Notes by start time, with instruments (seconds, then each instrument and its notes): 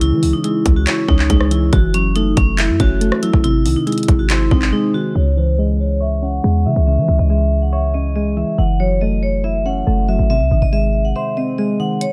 Already playing: 808-style bass C#2, synth keys C#3 E3 G#3 C#4 C#5
0.01 synth keys C#3, vibraphone E4, closed hi-hat
0.12 808-style bass E3
0.22 808-style bass C#2, synth keys E3, open hi-hat
0.33 vibraphone D#4
0.44 synth keys G#3, vibraphone E4, closed hi-hat
0.66 808-style bass C#2, kick, closed hi-hat
0.76 vibraphone F#4
0.87 vibraphone E4, synth keys C#5, clap, closed hi-hat
1.08 808-style bass C#2, synth keys C#4, vibraphone D#4, kick
1.19 clap
1.30 808-style bass C#2, synth keys G#3, vibraphone D#4, kick, closed hi-hat
1.41 cross-stick
1.51 synth keys E3, vibraphone E4, closed hi-hat
1.72 808-style bass F#1, synth keys E3, vibraphone F#4, kick, closed hi-hat
1.94 synth keys F#3, vibraphone C#4, closed hi-hat
2.16 synth keys A3, vibraphone D#4, closed hi-hat
2.37 808-style bass F#1, vibraphone C#4, kick, closed hi-hat
2.58 synth keys E4, vibraphone E4, clap, closed hi-hat
2.69 808-style bass F#2
2.80 808-style bass F#1, synth keys C#4, vibraphone F#4, kick, closed hi-hat
3.01 synth keys A3, closed hi-hat
3.12 cross-stick
3.23 synth keys F#3, vibraphone E4, closed hi-hat
3.33 808-style bass G#1, kick
3.44 synth keys C3, vibraphone E4, closed hi-hat
3.66 808-style bass C2, synth keys D#3, open hi-hat
3.76 vibraphone D#4
3.87 synth keys G#3, vibraphone E4, closed hi-hat
3.92 closed hi-hat
3.98 closed hi-hat
4.03 closed hi-hat
4.08 808-style bass G#1, kick, closed hi-hat
4.19 vibraphone F#4
4.30 vibraphone E4, synth keys C5, clap, closed hi-hat
4.51 808-style bass G#1, synth keys C4, vibraphone D#4, kick
4.62 clap
4.73 synth keys G#3, vibraphone D#4
4.94 synth keys D#3, vibraphone F#4
5.15 808-style bass C#2, synth keys C#3, vibraphone C#5
5.37 synth keys E3, vibraphone C5
5.58 synth keys G#3, vibraphone D#5
5.80 vibraphone C#5
6.00 synth keys C#5, vibraphone E5
6.22 synth keys C#4, vibraphone F#5
6.44 808-style bass E2, synth keys G#3
6.66 808-style bass C#3, synth keys E3, vibraphone E5
6.76 808-style bass C#2
6.87 synth keys C#3, vibraphone E5
6.98 808-style bass E3
7.08 808-style bass C#2, synth keys E3
7.19 808-style bass C#2, vibraphone D#5
7.30 synth keys G#3, vibraphone E5
7.62 vibraphone F#5
7.73 synth keys C#5, vibraphone E5
7.94 synth keys C#4, vibraphone D#5
8.16 synth keys G#3, vibraphone D#5
8.37 synth keys E3, vibraphone E5
8.58 808-style bass F#1, synth keys E3, vibraphone F#5
8.80 synth keys F#3, vibraphone C#5
9.01 synth keys A3, vibraphone D#5
9.23 vibraphone C#5
9.44 synth keys E4, vibraphone E5
9.66 synth keys C#4, vibraphone F#5
9.87 808-style bass F#1, synth keys A3
10.08 synth keys F#3, vibraphone E5
10.19 808-style bass G#1
10.30 synth keys C3, vibraphone E5
10.41 808-style bass C2
10.51 808-style bass G#1, synth keys D#3
10.62 808-style bass G#1, vibraphone D#5
10.72 synth keys G#3, vibraphone E5
11.05 vibraphone F#5
11.16 synth keys C5, vibraphone E5
11.37 synth keys C4, vibraphone D#5
11.58 synth keys G#3, vibraphone D#5
11.80 synth keys D#3, vibraphone F#5
12.01 vibraphone C#5, closed hi-hat